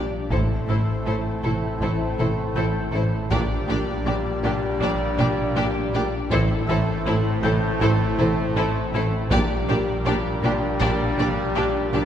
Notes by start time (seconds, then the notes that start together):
Already playing: A#1 A#2 G3 A#3 D4 G4 D5 A#6
0.30 A1 A2 A3 C4 E4 A4 C5, taiko
0.68 A1 A2 E4 A4 C5 E6
1.05 A1 A2 E4 A4 C5
1.42 A1 A2 E4 A4 C5, taiko mid
1.80 A1 A2 E4 A4 C5, taiko
2.18 A1 A2 E4 A4 C5, taiko mid
2.55 A1 A2 E4 A4 C5 G6
2.92 A1 A2 E4 A4 C5
3.30 A#1 A#2 G3 A#3 D4 G4 D5, taiko
3.67 A#1 A#2 D4 G4 D5
4.05 A#1 A#2 D4 G4 D5
4.43 A#1 A#2 D4 G4 D5, taiko mid
4.80 A#1 A#2 D4 G4 D5, taiko
5.18 A#1 A#2 D4 G4 D5, taiko mid
5.55 A#1 A#2 D4 G4 D5
5.93 A#1 A#2 D4 G4 D5
6.30 A1 A2 A3 C4 E4 A4 C5, taiko
6.67 A1 A2 E4 A4 C5 E5 E6
7.06 A1 A2 E4 A4 C5
7.43 A1 A2 E4 A4 C5 G5 G6, taiko mid
7.81 A1 A2 E4 A4 C5, taiko
8.18 A1 A2 E4 A4 C5, taiko mid
8.55 A1 A2 E4 A4 C5
8.93 A1 A2 E4 A4 C5
9.30 A#1 A#2 G3 A#3 D4 G4 A#4 D5, taiko
9.67 A#1 A#2 D4 G4 D5
10.05 A#1 A#2 D4 G4 D5
10.43 A#1 A#2 D4 G4 D5, taiko mid
10.80 A#1 A#2 D4 G4 D5 A5 A6, taiko
11.18 A#1 A#2 D4 G4 D5, taiko mid
11.55 A#1 A#2 D4 G4 D5
11.93 A#1 A#2 D4 G4 D5